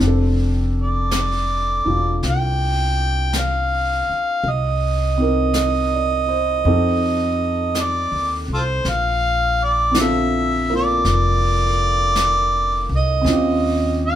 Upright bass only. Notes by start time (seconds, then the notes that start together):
0.00 F1
1.86 E1
2.23 C2
4.10 muted upright bass stroke
4.44 C2
6.65 F2
8.12 D#2
8.48 C2
8.85 A#1
11.05 F1
12.89 C2
13.24 D#2